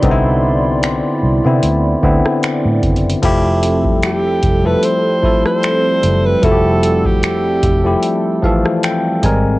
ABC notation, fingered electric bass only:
X:1
M:4/4
L:1/16
Q:"Swing 16ths" 1/4=75
K:Flyd
V:1 name="Fingered electric bass" clef=bass
C,,4- C,, z C,, C, D,,2 D,, z2 A,, _G,,,2 | F,,,6 F,,,2 z6 _G,,,2 | F,,,6 F,,,2 z6 _A,,,2 |]